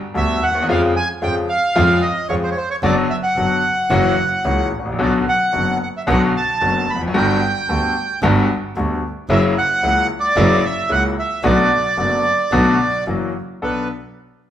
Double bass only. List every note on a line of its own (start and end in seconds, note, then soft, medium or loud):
0.16 0.38 D2 medium
0.42 0.69 D#2 medium
0.69 0.92 F2 medium
1.23 1.45 F2 medium
1.76 1.99 F2 loud
2.30 2.52 F2 medium
2.83 3.06 F#1 medium
3.36 3.59 F#1 medium
3.91 4.13 F#1 loud
4.45 4.68 C#2 medium
4.73 4.99 A1 medium
5.00 5.23 B1 medium
5.55 5.77 F#1 medium
6.08 6.31 B1 loud
6.62 6.84 F#1 medium
6.89 7.15 F1 medium
7.15 7.38 G1 loud
7.69 7.92 D2 medium
8.23 8.45 G1 loud
8.76 8.99 D2 medium
9.30 9.52 F#1 loud
9.83 10.05 C#2 medium
10.37 10.59 F#1 loud
10.90 11.13 C#2 medium
11.44 11.66 B1 loud
11.98 12.21 F#1 medium
12.52 12.75 B1 loud
13.07 13.31 F#1 medium
13.62 13.85 B1 medium